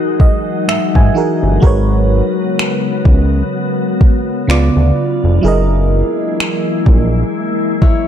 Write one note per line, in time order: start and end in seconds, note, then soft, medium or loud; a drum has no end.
0.00 1.10 E3 medium
0.00 4.44 F#3 medium
0.00 1.59 G#3 medium
0.00 1.11 D#4 medium
0.00 1.59 D#4 medium
0.00 1.12 F#4 medium
0.00 1.59 F#4 medium
0.00 1.12 G#4 medium
0.00 1.13 A#4 medium
0.20 0.65 D#5 medium
0.20 kick medium
0.68 0.79 G#2 soft
0.68 0.94 E5 medium
0.68 finger snap medium
0.95 1.11 G#2 medium
0.95 1.59 G#5 medium
0.95 kick medium
1.14 1.62 E3 medium
1.14 1.63 D#4 medium
1.14 1.60 F#4 medium
1.14 1.63 G#4 medium
1.14 1.62 A#4 medium
1.43 1.58 G1 medium
1.60 2.22 G#1 loud
1.60 4.46 C#3 medium
1.60 4.43 G#3 medium
1.60 4.46 B3 medium
1.60 4.44 F#4 medium
1.60 4.46 F#4 medium
1.60 4.45 A#4 medium
1.60 kick loud
1.65 4.45 B4 medium
1.65 4.46 C#5 medium
2.59 finger snap loud
3.05 3.43 C#2 medium
3.05 kick loud
4.01 kick medium
4.47 4.70 C#2 loud
4.47 5.43 C#3 medium
4.47 5.43 B3 medium
4.47 5.44 B3 medium
4.47 5.43 D4 medium
4.47 5.43 F4 medium
4.47 5.44 F4 medium
4.47 5.45 D5 medium
4.47 finger snap medium
4.76 4.92 D2 medium
5.24 5.40 F1 medium
5.41 6.03 F#1 loud
5.41 8.08 E3 medium
5.41 8.08 F#3 medium
5.41 8.08 G#3 medium
5.41 8.08 A#3 medium
5.41 8.08 E4 medium
5.41 8.08 G#4 medium
5.46 8.08 A#4 medium
5.46 8.08 D#5 medium
6.40 finger snap loud
6.86 7.24 A#1 medium
6.86 kick loud
7.82 8.08 E4 medium
7.82 8.08 C#5 medium
7.82 kick medium